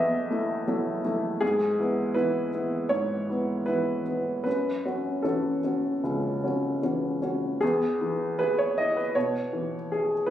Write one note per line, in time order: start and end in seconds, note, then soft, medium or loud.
0.00 0.28 E2 medium
0.00 1.45 A2 soft
0.00 0.68 F#3 soft
0.00 0.30 A3 soft
0.00 0.31 E4 soft
0.00 1.44 C#5 medium
0.00 1.44 D#5 medium
0.00 1.03 E5 medium
0.30 0.64 A3 soft
0.30 0.64 E4 soft
0.68 1.01 F#3 soft
0.68 1.01 A3 soft
0.68 1.01 E4 soft
1.04 1.38 A3 soft
1.04 1.38 E4 soft
1.41 1.78 G#2 medium
1.41 2.15 G#4 medium
1.80 2.13 B3 soft
1.80 2.13 E4 soft
2.14 2.49 E3 soft
2.14 2.50 B3 soft
2.14 2.50 E4 soft
2.14 2.90 B4 medium
2.54 2.87 B3 soft
2.54 2.88 E4 soft
2.89 3.27 G#2 soft
2.89 3.67 C#5 medium
3.29 3.64 B3 soft
3.29 3.64 E4 soft
3.66 4.02 E3 soft
3.66 4.03 B3 soft
3.66 4.03 E4 soft
3.66 4.42 B4 medium
4.07 4.42 B3 soft
4.07 4.43 E4 soft
4.44 4.84 F#2 soft
4.44 5.24 B4 medium
4.85 5.21 C#4 soft
4.85 5.21 F#4 soft
5.22 5.60 E3 soft
5.22 5.60 C#4 soft
5.22 5.61 F#4 soft
5.22 6.81 A4 soft
5.64 6.00 C#4 soft
5.64 6.00 F#4 soft
6.04 6.42 C#2 soft
6.44 6.79 C#4 soft
6.44 6.79 F#4 soft
6.83 7.18 E3 soft
6.83 7.18 C#4 soft
6.83 7.19 F#4 soft
7.22 7.58 C#4 soft
7.22 7.58 F#4 soft
7.61 9.12 E2 medium
7.61 8.39 G#4 medium
8.01 8.63 E3 soft
8.39 9.01 G#4 soft
8.39 8.58 B4 medium
8.58 8.78 C#5 medium
8.78 9.39 E4 soft
8.78 8.97 D#5 medium
8.97 9.15 B4 medium
9.15 9.75 B2 soft
9.15 10.28 C#5 medium
9.53 10.13 E3 soft
9.92 10.30 G#4 medium
10.26 10.30 B4 medium